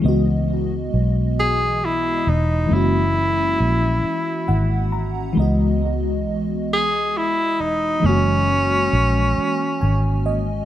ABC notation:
X:1
M:6/8
L:1/8
Q:3/8=45
K:C#dor
V:1 name="Tenor saxophone"
z3 G E D | E4- E z | z3 G E D | C4- C z |]
V:2 name="FM electric piano"
z6 | z4 f a | z6 | z4 g d |]
V:3 name="FM electric piano"
[E,G,B,Fd]6 | [E,G,A,CF]6 | [E,G,B,Fd]6 | [E,G,A,CF]6 |]
V:4 name="Fingered electric bass" clef=bass
C,,2 B,,,3 E,,, | F,,,2 A,,, z G,,,2 | C,,2 B,,,3 E,,, | F,,,2 A,,, z G,,,2 |]